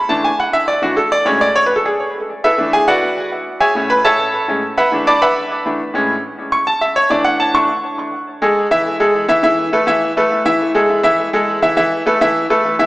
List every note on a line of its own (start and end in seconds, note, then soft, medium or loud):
0.09 0.29 E3 medium
0.09 0.29 A3 medium
0.09 0.29 D4 medium
0.09 0.24 A5 medium
0.24 0.39 G#5 medium
0.40 0.53 F#5 medium
0.53 0.68 E5 loud
0.68 0.82 D5 medium
0.82 0.95 E3 soft
0.82 0.96 A3 soft
0.82 0.96 D4 medium
0.82 0.97 F#4 medium
0.97 1.11 A4 medium
1.12 1.26 D5 loud
1.25 1.45 A2 medium
1.25 1.46 G#3 medium
1.25 1.46 C#4 medium
1.25 1.40 C#5 medium
1.41 1.55 D5 loud
1.56 1.65 C#5 loud
1.66 1.76 B4 medium
1.76 1.85 A4 medium
1.86 2.13 G#4 medium
2.44 2.71 E4 medium
2.44 2.71 A4 medium
2.44 2.71 B4 medium
2.44 2.71 E5 medium
2.58 3.00 E3 medium
2.58 3.00 A3 soft
2.58 3.00 D4 medium
2.73 2.87 G#4 medium
2.73 2.87 G#5 loud
2.88 3.29 F#4 medium
2.88 3.29 B4 medium
2.88 3.29 D5 medium
2.88 3.28 F#5 loud
3.60 3.88 G#4 medium
3.60 3.88 C#5 medium
3.60 3.88 E5 medium
3.60 3.88 G#5 loud
3.75 4.46 A2 medium
3.75 4.73 A3 medium
3.75 4.47 C#4 medium
3.90 4.04 B4 medium
3.90 4.04 B5 loud
4.05 4.45 A4 medium
4.05 4.45 C#5 medium
4.05 4.46 E5 medium
4.05 4.45 A5 loud
4.48 4.61 A2 medium
4.48 4.61 G#3 soft
4.48 4.62 C#4 medium
4.78 5.05 B4 medium
4.78 5.05 E5 medium
4.78 5.05 F#5 medium
4.78 5.05 B5 medium
4.92 5.11 E3 medium
4.92 5.12 A3 soft
4.92 5.12 D4 medium
5.07 5.21 D5 medium
5.07 5.21 A5 medium
5.07 5.20 B5 medium
5.07 5.21 D6 loud
5.22 5.62 B4 medium
5.22 5.62 E5 medium
5.22 5.62 F#5 medium
5.22 5.62 B5 loud
5.66 5.78 E3 medium
5.66 5.78 A3 soft
5.66 5.79 D4 medium
5.94 6.13 A2 medium
5.94 6.14 G#3 medium
5.94 6.14 C#4 medium
6.52 6.66 C#6 loud
6.67 6.81 A5 loud
6.81 6.96 E5 medium
6.96 7.10 C#5 medium
7.10 7.52 E3 medium
7.10 7.52 A3 medium
7.10 7.52 D4 medium
7.10 7.25 D5 medium
7.25 7.39 F#5 loud
7.40 7.54 A5 loud
7.54 7.67 E3 medium
7.54 7.68 A3 soft
7.54 7.68 D4 medium
7.54 7.95 C#6 loud
8.42 8.66 G#3 medium
8.42 8.66 G#4 medium
8.42 8.66 A4 medium
8.71 8.95 E3 loud
8.71 8.95 E4 medium
8.71 8.95 E5 loud
9.00 9.24 G#3 medium
9.00 9.24 G#4 medium
9.00 9.24 A4 medium
9.28 9.41 E3 loud
9.28 9.41 E4 medium
9.28 9.41 E5 loud
9.43 9.67 E3 medium
9.43 9.67 E4 medium
9.43 9.67 E5 medium
9.73 9.85 A3 medium
9.73 9.85 A4 medium
9.73 9.85 B4 medium
9.87 10.11 E3 loud
9.87 10.11 E4 loud
9.87 10.11 E5 loud
10.17 10.41 A3 medium
10.17 10.41 A4 medium
10.17 10.41 B4 medium
10.45 10.69 E3 medium
10.45 10.69 E4 medium
10.45 10.69 E5 loud
10.74 10.98 G#3 medium
10.74 10.99 G#4 medium
10.74 10.99 A4 medium
11.03 11.27 E3 loud
11.03 11.27 E4 loud
11.03 11.28 E5 loud
11.33 11.57 G#3 medium
11.33 11.57 G#4 medium
11.33 11.57 A4 medium
11.62 11.74 E3 medium
11.62 11.74 E4 medium
11.62 11.74 E5 medium
11.77 12.01 E3 loud
11.77 12.01 E4 medium
11.77 12.01 E5 medium
12.06 12.18 A3 medium
12.06 12.18 A4 medium
12.06 12.18 B4 medium
12.21 12.45 E3 loud
12.21 12.45 E4 loud
12.21 12.45 E5 loud
12.50 12.74 A3 medium
12.50 12.74 A4 medium
12.50 12.74 B4 medium
12.79 12.86 E3 medium
12.79 12.86 E4 medium
12.79 12.86 E5 medium